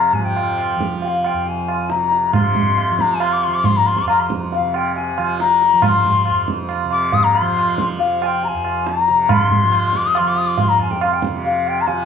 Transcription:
Already playing: F2 C3 F3 A#5
0.13 G#5, tabla tin, tabla ge
0.19 F3
0.24 G5
0.36 tabla na
0.58 tabla na
0.76 F3
0.81 tabla ke
1.02 G5, tabla tin
1.08 F5
1.24 G5, tabla na
1.33 F2
1.46 G#5, tabla tin
1.68 tabla na
1.89 C3 A#5, tabla te
2.12 tabla te
2.33 C3 C6, tabla na, tabla ge
2.55 tabla ge
2.78 tabla na
2.91 F3
2.99 A#5, tabla ke
3.11 G#5
3.20 C6, tabla na
3.32 D6
3.42 C6, tabla na
3.47 F3
3.54 D6
3.64 C6, tabla tin, tabla ge
3.77 A#5
3.86 C6, tabla na
3.97 D6, tabla ke
4.02 F2
4.08 A#5, tabla na
4.20 C6
4.30 tabla ke
4.52 F5, tabla tin
4.60 C3
4.74 G5, tabla na
4.95 G#5, tabla tin
5.18 F3, tabla na
5.40 A#5, tabla te
5.62 tabla te
5.73 F3
5.82 C6, tabla na, tabla ge
6.05 tabla ge
6.25 F2, tabla na
6.48 tabla ke
6.69 tabla na
6.84 C3
6.91 D6, tabla na
7.12 D#6, tabla tin, tabla ge
7.23 A#5
7.35 tabla na
7.41 F3 C6
7.57 tabla na
7.78 tabla ke
7.98 F3 F5, tabla tin
8.22 G#5, tabla na
8.26 G5
8.43 A#5, tabla tin
8.47 G#5
8.54 F2
8.64 tabla na
8.87 A#5, tabla te
9.08 C3, tabla te
9.29 C6, tabla na, tabla ge
9.51 tabla ge
9.63 F3
9.72 tabla na
9.93 D6, tabla ke
10.06 D#6
10.15 C6, tabla na
10.20 F3
10.28 D6
10.36 D#6, tabla na
10.47 D6
10.57 C6, tabla tin, tabla ge
10.68 A#5
10.76 F2, tabla na
10.81 G#5
10.90 G5, tabla ke
11.01 F5, tabla na
11.13 G5
11.22 tabla ke
11.30 C3
11.45 F5, tabla tin
11.66 G5, tabla na
11.81 A#5
11.87 F3 G#5, tabla tin

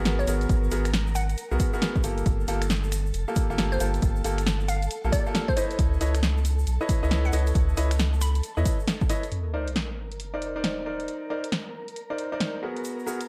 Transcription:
Already playing: G#1 B3 F#4 G#4 A#4 A#5
0.05 snare, closed hi-hat, shaker
0.19 C#5, shaker
0.27 G#1 B3 F#4 G#4 A#4, open hi-hat, shaker
0.41 closed hi-hat, shaker
0.49 G#1, kick, closed hi-hat, shaker
0.63 shaker
0.71 G#1 B3 F#4 G#4 A#4, open hi-hat, shaker
0.85 finger snap, closed hi-hat, shaker
0.94 snare, closed hi-hat, shaker
1.07 shaker
1.15 F#5, open hi-hat, shaker
1.29 closed hi-hat, shaker
1.38 closed hi-hat, shaker
1.51 B1 B3 F#4 G#4 A#4, shaker
1.60 kick, open hi-hat, shaker
1.73 B3 F#4 G#4 A#4, shaker
1.82 snare, closed hi-hat, shaker
1.95 kick, shaker
2.04 G1 A#3 F4 G4 A4, open hi-hat, shaker
2.18 closed hi-hat, shaker
2.26 G1 A4 A5, kick, closed hi-hat, shaker
2.40 shaker
2.48 G1 A#3 F4 G4 A4, open hi-hat, shaker
2.62 finger snap, closed hi-hat, shaker
2.70 snare, closed hi-hat, shaker
2.84 shaker
2.92 finger snap, open hi-hat, shaker
3.06 shaker
3.14 F1, closed hi-hat, shaker
3.28 A#3 F4 G4 A4, shaker
3.36 kick, open hi-hat, shaker
3.50 G1 A#3 F4 G4 A4, shaker
3.58 snare, closed hi-hat, shaker
3.72 C5, shaker
3.80 G1 A#3 F4 G4 A4, open hi-hat, shaker
3.94 closed hi-hat, shaker
4.02 G1, kick, closed hi-hat, shaker
4.16 shaker
4.24 G1 A#3 F4 G4 A4, open hi-hat, shaker
4.38 finger snap, closed hi-hat, shaker
4.47 snare, closed hi-hat, shaker
4.60 shaker
4.68 F5, open hi-hat, shaker
4.82 closed hi-hat, shaker
4.91 closed hi-hat, shaker
5.04 A#1 A#3 F4 G4 A4, shaker
5.12 D5, kick, open hi-hat, shaker
5.26 A#3 F4 G4 A4, shaker
5.35 snare, closed hi-hat, shaker
5.48 C5, kick, shaker
5.57 E4 B4 C5 C#5 D#5, open hi-hat, shaker
5.71 closed hi-hat, shaker
5.79 C#2, kick, closed hi-hat, shaker
5.93 shaker
6.01 C#2 E4 B4 C#5 D#5, open hi-hat, shaker
6.15 finger snap, closed hi-hat, shaker
6.23 snare, closed hi-hat, shaker
6.37 shaker
6.45 open hi-hat, shaker
6.59 shaker
6.67 B1, closed hi-hat, shaker
6.81 E4 B4 C#5 D#5, shaker
6.89 kick, open hi-hat, shaker
7.03 C#2 E4 B4 C#5 D#5, shaker
7.11 snare, closed hi-hat, shaker
7.25 F#5, shaker
7.33 C#2 E4 B4 C#5 D#5, open hi-hat, shaker
7.47 closed hi-hat, shaker
7.55 C#2, kick, closed hi-hat, shaker
7.69 shaker
7.77 C#2 E4 B4 C#5 D#5, open hi-hat, shaker
7.91 finger snap, closed hi-hat, shaker
7.99 snare, closed hi-hat, shaker
8.13 shaker
8.21 B5, finger snap, open hi-hat, shaker
8.35 closed hi-hat, shaker
8.43 closed hi-hat, shaker
8.57 E2 E4 B4 C#5 D#5, shaker
8.65 kick, open hi-hat, shaker
8.80 shaker
8.88 snare, closed hi-hat, shaker
9.01 kick, shaker
9.09 E4 B4 C#5 D#5, open hi-hat, shaker
9.23 closed hi-hat, shaker
9.32 A#4 A#5, closed hi-hat, sub drop
9.54 D#4 A#4 C5 D5
9.68 closed hi-hat
9.76 snare, closed hi-hat
10.12 closed hi-hat
10.20 closed hi-hat
10.34 D#4 A#4 C5 D5
10.42 closed hi-hat
10.56 D#4 A#4 C5 D5
10.64 snare, closed hi-hat
10.86 D#4 A#4 C5 D5
11.00 closed hi-hat
11.08 closed hi-hat
11.30 D#4 A#4 C5 D5
11.44 closed hi-hat
11.52 snare, closed hi-hat
11.88 closed hi-hat
11.96 closed hi-hat
12.10 D#4 A#4 C5 D5
12.18 closed hi-hat
12.32 D#4 A#4 C5 D5
12.40 snare, closed hi-hat
12.63 B3 F#4 G#4 A#4
12.77 closed hi-hat
12.85 closed hi-hat, shaker
12.99 shaker
13.07 B3 F#4 G#4 A#4, shaker
13.20 closed hi-hat, shaker

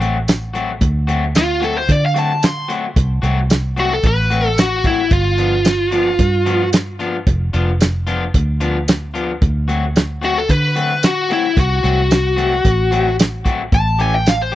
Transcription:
Already playing: A1
0.00 F#3 A3 C4 F#4, closed hi-hat
0.28 snare, closed hi-hat, tambourine
0.54 F#3 A3 C4 F#4, closed hi-hat
0.81 D2, kick, closed hi-hat
1.07 F#3 A3 C4 F#4, closed hi-hat
1.35 F4, snare, closed hi-hat, tambourine
1.60 F#3 A3 C4 F#4 A4, closed hi-hat
1.78 C5
1.89 D3 D5, kick, closed hi-hat
2.06 F5
2.14 F#3 A3 C4 F#4, closed hi-hat
2.19 A5
2.43 C6, snare, closed hi-hat, tambourine
2.68 F#3 A3 C4 F#4, closed hi-hat
2.96 C2, kick, closed hi-hat
3.22 C2 F#3 A3 C4 F#4, closed hi-hat
3.50 snare, closed hi-hat, tambourine
3.76 F#3 A3 C4 F#4, closed hi-hat
3.93 A4
4.03 A1 B4, kick, closed hi-hat
4.30 F#3 A3 C4 F#4, closed hi-hat
4.58 F#4, snare, closed hi-hat, tambourine
4.84 F#3 A3 C4 E4 F#4, kick, closed hi-hat
5.11 G1 F4, kick, closed hi-hat
5.38 F3 B3 D4 F4, closed hi-hat
5.65 snare, closed hi-hat, tambourine
5.91 F3 B3 D4 F4, closed hi-hat
6.19 G2, kick, closed hi-hat
6.45 F3 B3 D4 F4, closed hi-hat
6.73 snare, closed hi-hat, tambourine
6.99 F3 B3 D4 F4, closed hi-hat
7.27 F1, kick, closed hi-hat
7.53 F1 F3 B3 D4 F4, closed hi-hat
7.80 snare, closed hi-hat, tambourine
8.07 F3 B3 D4 F4, closed hi-hat
8.34 D2, kick, closed hi-hat
8.60 F3 B3 D4 F4, closed hi-hat
8.88 snare, closed hi-hat, tambourine
9.14 F3 B3 D4 F4, closed hi-hat
9.42 D2, kick, closed hi-hat
9.68 F#3 A3 C4 F#4, closed hi-hat
9.96 snare, closed hi-hat, tambourine
10.21 F#3 A3 C4 F#4, closed hi-hat
10.38 A4
10.49 D3 B4, kick, closed hi-hat
10.76 F#3 A3 C4 F#4, closed hi-hat
11.03 F#4, snare, closed hi-hat, tambourine
11.29 F#3 A3 C4 E4 F#4, closed hi-hat
11.57 C2 F#4, kick, closed hi-hat
11.83 C2 F#3 A3 C4 F#4, closed hi-hat
12.11 snare, closed hi-hat, tambourine
12.36 F#3 A3 C4 F#4, closed hi-hat
12.65 A1, kick, closed hi-hat
12.91 F#3 A3 C4 F#4, closed hi-hat
13.19 snare, closed hi-hat, tambourine
13.45 F#3 A3 C4 F#4, kick, closed hi-hat
13.72 A1 A5, kick, closed hi-hat
13.99 E3 A3 C#4 G4 G#5, closed hi-hat
14.15 G5
14.26 F5, snare, closed hi-hat, tambourine
14.42 C5
14.52 G4

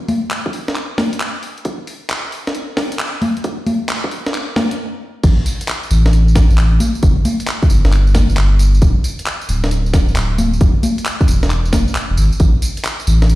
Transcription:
0.08 open hi-hat, high conga
0.31 clap, closed hi-hat
0.46 kick
0.53 open hi-hat
0.68 snare, closed hi-hat
0.76 clap, closed hi-hat
0.98 kick, snare, open hi-hat, high conga
1.13 closed hi-hat
1.20 clap, closed hi-hat
1.43 open hi-hat
1.58 closed hi-hat
1.65 kick, closed hi-hat
1.87 open hi-hat
2.10 clap, closed hi-hat
2.32 open hi-hat
2.47 snare, closed hi-hat
2.55 closed hi-hat
2.77 kick, snare, open hi-hat
2.92 closed hi-hat
2.99 clap, closed hi-hat
3.22 open hi-hat, high conga
3.37 closed hi-hat
3.44 kick, closed hi-hat
3.67 open hi-hat, high conga
3.89 clap, closed hi-hat
4.04 kick
4.11 open hi-hat
4.26 snare, closed hi-hat
4.34 clap, closed hi-hat
4.56 kick, snare, open hi-hat, high conga
4.71 closed hi-hat
5.23 A1, kick, closed hi-hat, crash, tambourine
5.46 open hi-hat, tambourine
5.61 closed hi-hat, tambourine
5.68 clap, closed hi-hat, tambourine
5.83 tambourine
5.91 A1, open hi-hat, tambourine
6.06 snare, closed hi-hat, tambourine
6.13 closed hi-hat, tambourine
6.28 tambourine
6.36 kick, snare, open hi-hat, tambourine
6.50 A1, tambourine
6.58 clap, closed hi-hat, tambourine
6.80 open hi-hat, tambourine, high conga
6.95 tambourine
7.03 G1, kick, closed hi-hat, tambourine
7.25 open hi-hat, tambourine, high conga
7.40 closed hi-hat, tambourine
7.48 clap, closed hi-hat, tambourine
7.62 kick, tambourine
7.70 G1, open hi-hat, tambourine
7.85 snare, closed hi-hat, tambourine
7.92 clap, closed hi-hat, tambourine
8.07 tambourine
8.15 kick, snare, open hi-hat, tambourine, high conga
8.30 G1, tambourine
8.37 clap, closed hi-hat, tambourine
8.59 open hi-hat, tambourine
8.74 tambourine
8.82 D1, kick, closed hi-hat, tambourine
9.04 open hi-hat, tambourine
9.19 closed hi-hat, tambourine
9.26 clap, closed hi-hat, tambourine
9.41 tambourine
9.49 D1, open hi-hat, tambourine
9.64 snare, closed hi-hat, tambourine
9.71 closed hi-hat, tambourine
9.86 tambourine
9.94 kick, snare, open hi-hat, tambourine
10.08 D1, tambourine
10.16 clap, closed hi-hat, tambourine
10.38 open hi-hat, tambourine, high conga
10.53 tambourine
10.61 E1, kick, closed hi-hat, tambourine
10.83 open hi-hat, tambourine, high conga
10.98 closed hi-hat, tambourine
11.06 clap, closed hi-hat, tambourine
11.21 kick, tambourine
11.28 E1, open hi-hat, tambourine
11.43 snare, closed hi-hat, tambourine
11.50 clap, closed hi-hat, tambourine
11.65 tambourine
11.73 kick, snare, open hi-hat, tambourine, high conga
11.88 tambourine
11.95 clap, closed hi-hat, tambourine
12.10 E1
12.17 G#1, open hi-hat, tambourine
12.32 tambourine
12.40 A1, kick, closed hi-hat, tambourine
12.62 open hi-hat, tambourine
12.77 closed hi-hat, tambourine
12.85 clap, closed hi-hat, tambourine
13.00 tambourine
13.07 A1, open hi-hat, tambourine
13.22 snare, closed hi-hat, tambourine
13.29 closed hi-hat, tambourine

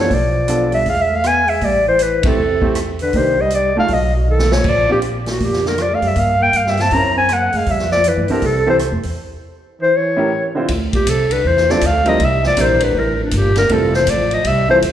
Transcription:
Already playing: E3
0.00 C#5
0.10 B1 F3 D5, kick, open hi-hat
0.47 B3 D4 F4 A4, closed hi-hat
0.71 G3 E5, open hi-hat
0.86 E2 G#3 F5, kick, open hi-hat
0.99 G#3 E5
1.11 A3
1.16 F5
1.24 B3 G#5, cross-stick, closed hi-hat
1.46 G#3 E5, open hi-hat
1.61 A1 G3 D5, kick, open hi-hat
1.86 E3 C5
1.99 E3 B4, closed hi-hat
2.23 C3 A3 C4 E4 G4, muted upright bass stroke, kick, ride
2.28 A4
2.37 E2
2.61 A3 C4 E4 G4, kick
2.75 cross-stick, closed hi-hat
2.99 D3 B4, open hi-hat
3.13 C2 D#3 A#3 D4 D#4 G4, kick, open hi-hat
3.17 C5
3.39 G3 D#5
3.50 G3, closed hi-hat
3.55 D5
3.75 A3 D#4 F4 A4 F5
3.88 B1 F#3, kick, open hi-hat
3.93 D#5
4.14 A2 F#4
4.27 D#3 A4
4.39 snare
4.50 F3 C#5, snare
4.64 A#1 F3, kick, crash
4.69 D5
4.89 A#2 C4 D4 F4 G4
5.02 closed hi-hat
5.26 A2, snare, open hi-hat
5.30 F#4
5.39 F2 A#2, kick, open hi-hat
5.45 G4
5.53 snare
5.64 D3, snare
5.68 A#4
5.78 F3, cross-stick, closed hi-hat
5.82 D5
5.91 A3 F5
6.02 F#2 G3, open hi-hat
6.08 E5
6.16 G2 A#3 F5, kick, open hi-hat
6.38 A#3
6.43 G5
6.53 G2 A#3, closed hi-hat
6.57 F5
6.67 G3 E5, snare
6.77 C4, snare, open hi-hat
6.82 A5
6.91 F#2 C4 C#4 E4 A#4 A#5, kick, open hi-hat
7.15 C4 G#5
7.29 A#3, cross-stick, closed hi-hat
7.33 F#5
7.53 F#2 G#3, open hi-hat
7.57 F5
7.66 F2 G3, kick, open hi-hat
7.71 E5
7.79 snare
7.90 F3 D5, snare
8.04 E3, closed hi-hat
8.08 B4
8.17 G2
8.28 E2 D3 C4 E4 G4 A4 A#4, open hi-hat
8.42 C2 C3 A4, kick, open hi-hat
8.66 E3 C4 E4 G4 A4 C5
8.79 cross-stick, closed hi-hat
8.92 F2
9.03 E2, open hi-hat
9.81 E3 C5
9.94 E3 C#5
10.17 A2 C#4 E4 G4 A#4
10.55 D3 C4 E4 F4 C5
10.68 D2, kick, ride
10.93 A#2 G4, kick, ride
11.06 C2 C3 A4, kick, hi-hat pedal, ride
11.31 D3 B4, ride
11.45 E2 E3 C5, kick
11.57 snare
11.68 F3 C4 D4 E4 A4 D5, snare
11.81 D2 A3, kick, hi-hat pedal, ride
11.86 F5
12.05 F3 G3 C4 D4 E4 A#4 D#5, ride
12.19 C2 G3, kick, ride
12.25 E5
12.43 F3, snare
12.47 D5
12.57 A#1 E3 G3 C4 D4 E4 A#4, kick, hi-hat pedal, ride
12.61 C5
12.80 D3 B4, ride
12.94 A1 E3, kick
12.99 A#4
13.19 F2
13.23 D4
13.31 G1 A#2, kick, hi-hat pedal, ride
13.37 G4
13.56 D3 A#4, snare, ride
13.69 F1 C3 G3 C4 E4 F4 A4, kick, ride
13.94 E3 C5, snare
14.07 A1 F3 D5, kick, hi-hat pedal, ride
14.31 F3 D#5, ride
14.45 C2 G3 E5, kick, ride
14.69 E3 G3 C4 E4 F4 A4 C5
14.82 E2, kick, hi-hat pedal, ride

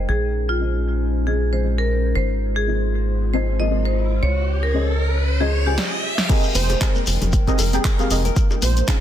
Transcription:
Already playing: G#3 D#4
0.09 A#1 C#4 G#4 C5
0.49 F4
0.60 C#4 F4 G#4 C5 D#5
1.26 C#4 F4 G#4 C5 D#5
1.52 C#4 F4 G#4 C5 D#5
1.63 C#4 F4 G#4 C5 D#5
1.78 A#4
2.16 G#1 F4 C5, riser
2.56 G#4
2.67 C4 F4 G#4 A#4 D#5
3.33 C4 F4 G#4 A#4 C5 D#5
3.59 C4 F4 G#4 A#4 D#5
3.70 C4 F4 G#4 A#4 D#5
3.85 C5
4.23 C#2 C#4 C#5
4.63 A#4
4.74 C#4 F4 G#4 C5 D#5
5.40 C#4 F4 G#4 C5 D#5
5.66 C#4 F4 G4 G#4 C5 G#5
5.78 snare
6.18 snare
6.29 G#3 C4 D#4 G4 G#4 A#4 D#5 G5, kick, closed hi-hat, crash, high bongo, shekere
6.44 shekere
6.55 F1 C5, open hi-hat, high conga, shekere
6.70 closed hi-hat, high bongo, shekere
6.81 C4 G4 G#4 A#4 D#5, kick, clap, closed hi-hat, shekere
6.95 high conga, shekere
7.07 F1, open hi-hat, shekere
7.21 F1, closed hi-hat, high bongo, low conga, shekere
7.32 kick, closed hi-hat, high conga, shekere
7.47 C4 G4 G#4 A#4 D#5, kick, closed hi-hat, shekere
7.58 F1 A#4, open hi-hat, high bongo, shekere
7.73 C4 G4 G#4 A#4 G5, closed hi-hat, high conga, shekere
7.85 kick, clap, closed hi-hat, shekere
7.99 C4 G4 G#4 A#4 F5, closed hi-hat, shekere
8.10 F1 C4 G4 G#4 A#4 D#5, open hi-hat, high bongo, shekere
8.25 A#4, closed hi-hat, high conga, shekere
8.36 G#3 C#4 C5, kick, closed hi-hat, shekere
8.51 high bongo, shekere
8.62 A#1 C5, open hi-hat, high conga, shekere
8.77 closed hi-hat, shekere
8.87 C#4 D#4 F4 G#4 C5, kick, clap, closed hi-hat, shekere

